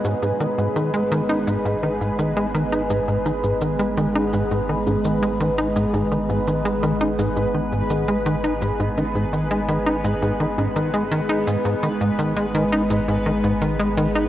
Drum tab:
SH |xxxxxxxxxx-xxxxx|xxxxxxxxxx-xxxxx|xxxxxxxxxx-xxxxx|xxxxxxxxxx-xxxxx|
CG |-------o--------|-------o---o----|-------o--------|--o----o---o----|

SH |xxxxxxxxxx-xxxxx|
CG |-------o--------|